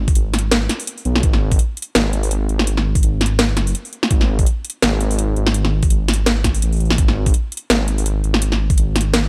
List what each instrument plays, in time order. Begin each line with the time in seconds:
Already playing: detuned saw bass G#1
0.08 kick, open hi-hat
0.15 detuned saw bass G#1, closed hi-hat
0.34 snare, closed hi-hat
0.39 closed hi-hat
0.52 snare, closed hi-hat
0.69 snare, closed hi-hat
0.80 open hi-hat
0.87 closed hi-hat
0.98 open hi-hat
1.05 detuned saw bass B1, closed hi-hat
1.16 snare
1.23 detuned saw bass G#1, kick, closed hi-hat
1.33 snare
1.51 kick, open hi-hat
1.59 closed hi-hat
1.77 closed hi-hat
1.82 closed hi-hat
1.95 detuned saw bass G#1, snare, closed hi-hat
2.13 closed hi-hat
2.23 open hi-hat
2.31 closed hi-hat
2.49 detuned saw bass G#1, closed hi-hat
2.59 snare
2.67 closed hi-hat
2.77 snare
2.95 kick, open hi-hat
3.03 detuned saw bass G#1, closed hi-hat
3.21 snare, closed hi-hat
3.26 closed hi-hat
3.39 snare, closed hi-hat
3.53 detuned saw bass G1, snare, closed hi-hat
3.67 open hi-hat
3.75 closed hi-hat
3.85 open hi-hat
3.93 closed hi-hat
4.03 snare
4.11 detuned saw bass G#1, kick, closed hi-hat
4.21 snare
4.39 kick, open hi-hat
4.46 closed hi-hat
4.65 closed hi-hat
4.70 closed hi-hat
4.82 detuned saw bass G#1, snare, closed hi-hat
5.01 closed hi-hat
5.11 open hi-hat
5.19 closed hi-hat
5.36 detuned saw bass G#1, closed hi-hat
5.46 snare
5.54 closed hi-hat
5.65 snare
5.83 kick, open hi-hat
5.90 detuned saw bass G#1, closed hi-hat
6.08 snare, closed hi-hat
6.13 closed hi-hat
6.26 snare, closed hi-hat
6.44 kick, snare, closed hi-hat
6.55 open hi-hat
6.62 detuned saw bass A1, closed hi-hat
6.73 open hi-hat
6.76 closed hi-hat, open hi-hat
6.80 open hi-hat
6.85 open hi-hat
6.90 snare
6.98 detuned saw bass G#1, kick, closed hi-hat
7.08 snare
7.26 kick, open hi-hat
7.34 closed hi-hat
7.52 closed hi-hat
7.57 closed hi-hat
7.70 detuned saw bass G#1, snare, closed hi-hat
7.88 closed hi-hat
7.98 open hi-hat
8.06 closed hi-hat
8.24 detuned saw bass G#1, closed hi-hat
8.34 snare
8.42 closed hi-hat
8.52 snare
8.70 kick, open hi-hat
8.78 detuned saw bass G#1, closed hi-hat
8.96 snare, closed hi-hat
9.01 closed hi-hat
9.14 snare, closed hi-hat